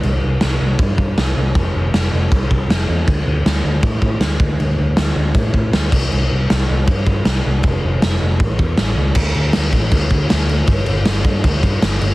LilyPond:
<<
  \new Staff \with { instrumentName = "Picked electric bass" } { \clef bass \time 4/4 \key c \lydian \tempo 4 = 158 c,8 c,8 c,8 c,8 g,8 g,8 c,8 c,8 | f,,8 f,,8 f,,8 f,,8 c,8 c,8 f,,8 e,8 | d,8 d,8 d,8 d,8 a,8 a,8 d,8 d,8 | d,8 d,8 d,8 d,8 a,8 a,8 d,8 c,8 |
c,8 c,8 c,8 c,8 g,8 g,8 c,8 c,8 | f,,8 f,,8 f,,8 f,,8 a,,8 e,8 a,,8 cis,8 | \key g \lydian d,8 d,8 d,8 a,,8 d,8 d,8 d,4 | g,,8 g,,8 g,,8 g,8 d,8 g,8 g,,8 g,,8 | }
  \new DrumStaff \with { instrumentName = "Drums" } \drummode { \time 4/4 cymc4 <cymc sn>4 <cymc bd>8 bd8 <cymc sn>4 | <cymc bd>4 <cymc sn>4 <cymc bd>8 bd8 <cymc sn>4 | <cymc bd>4 <cymc sn>4 <cymc bd>8 bd8 <cymc sn>8 bd8 | cymc4 <cymc sn>4 <cymc bd>8 bd8 <cymc sn>8 <cymc bd>8 |
cymc4 <cymc sn>4 <cymc bd>8 bd8 <cymc sn>4 | <cymc bd>4 <cymc sn>4 <cymc bd>8 bd8 <cymc sn>4 | <cymc bd>8 cymc8 <cymc sn>8 <cymc bd>8 <cymc bd>8 <cymc bd>8 <cymc sn>8 cymc8 | <cymc bd>8 cymc8 <cymc sn>8 <cymc bd>8 <cymc bd>8 <cymc bd>8 <cymc sn>8 cymc8 | }
>>